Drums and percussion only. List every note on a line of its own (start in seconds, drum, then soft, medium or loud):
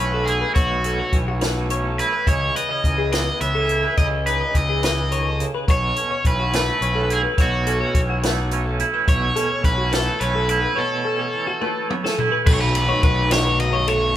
0.27 closed hi-hat soft
0.56 kick medium
0.56 closed hi-hat medium
0.84 closed hi-hat medium
1.13 kick medium
1.13 closed hi-hat medium
1.41 snare loud
1.41 closed hi-hat medium
1.70 closed hi-hat medium
1.99 closed hi-hat medium
2.27 kick medium
2.27 closed hi-hat medium
2.56 closed hi-hat medium
2.84 kick medium
2.84 closed hi-hat medium
3.12 snare medium
3.12 closed hi-hat medium
3.41 closed hi-hat medium
3.69 closed hi-hat medium
3.97 kick medium
3.97 closed hi-hat medium
4.26 closed hi-hat medium
4.55 kick medium
4.55 closed hi-hat medium
4.83 snare loud
4.83 closed hi-hat medium
5.12 closed hi-hat medium
5.40 closed hi-hat soft
5.68 kick loud
5.68 closed hi-hat medium
5.96 closed hi-hat medium
6.25 kick medium
6.25 closed hi-hat medium
6.53 snare loud
6.53 closed hi-hat medium
6.82 closed hi-hat medium
7.10 closed hi-hat medium
7.38 kick loud
7.38 closed hi-hat medium
7.67 closed hi-hat medium
7.95 kick medium
7.95 closed hi-hat medium
8.23 snare loud
8.23 closed hi-hat medium
8.51 closed hi-hat medium
8.80 closed hi-hat medium
9.08 kick loud
9.08 closed hi-hat medium
9.36 closed hi-hat medium
9.64 kick medium
9.64 closed hi-hat medium
9.92 snare loud
9.92 closed hi-hat medium
10.21 closed hi-hat medium
10.49 closed hi-hat medium
11.62 high tom medium
11.90 mid tom medium
12.06 snare medium
12.19 floor tom medium
12.47 kick loud
12.47 crash loud
12.75 ride medium
13.03 kick medium
13.03 ride medium
13.31 snare loud
13.31 ride loud
13.60 ride medium
13.88 ride medium